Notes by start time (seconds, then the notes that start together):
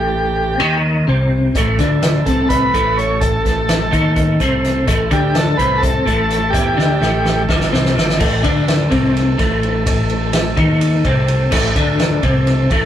Already playing: A1 A2 A3 G4
0.60 D#2 D#3 D#4
1.07 C2 C3 C4
1.55 A1 A2 A3 A4, kick, closed hi-hat
1.79 D2 D3 D4, kick, snare, closed hi-hat
2.03 snare, closed hi-hat
2.26 C2 C3 C4 A4, kick, closed hi-hat
2.49 B4, kick, closed hi-hat
2.74 A1 A2 A3, kick, closed hi-hat
2.97 C#5, closed hi-hat
3.21 A4, kick, closed hi-hat
3.45 kick, snare, closed hi-hat
3.69 snare, closed hi-hat
3.91 D#2 D#3 D#4, kick, closed hi-hat
4.16 kick, closed hi-hat
4.40 C2 C3 C4, kick, closed hi-hat
4.64 snare, closed hi-hat
4.87 A1 A2 A3, kick, closed hi-hat
5.11 D2 D3 D4 G4, kick, closed hi-hat
5.35 A4, snare, closed hi-hat
5.57 C2 C3 C4 B4, kick, closed hi-hat
5.78 A4
5.83 kick, closed hi-hat
6.06 A1 A2 A3, kick, closed hi-hat
6.30 snare, closed hi-hat
6.50 E3 G4, kick
6.54 E2 E4, closed hi-hat
6.77 D2 D3 D4, snare
7.00 A1 A2 A3, snare
7.25 snare
7.49 G1 G2 G3, kick, snare
7.61 snare
7.72 C2 C3 C4, snare
7.85 snare
7.95 G1 G2 G3, snare
8.09 snare
8.19 A1 A2 A3 A4, kick, crash
8.43 D2 D3 D4, kick, ride
8.68 snare, ride
8.90 C2 C3 C4, kick, ride
9.17 snare, ride
9.38 A1 A2 A3, kick, snare, ride
9.63 ride
9.86 kick, ride
10.10 ride
10.33 snare, ride
10.57 D#2 D#3 D#4, kick, ride
10.81 ride
11.05 C2 C3 C4, kick, ride
11.28 ride
11.51 A1 A2 A3, kick, crash
11.76 D2 D3 D4, kick, ride
12.00 snare, ride
12.22 C2 C3 C4, kick, ride
12.47 snare, ride
12.70 A1 A2 A3, kick, ride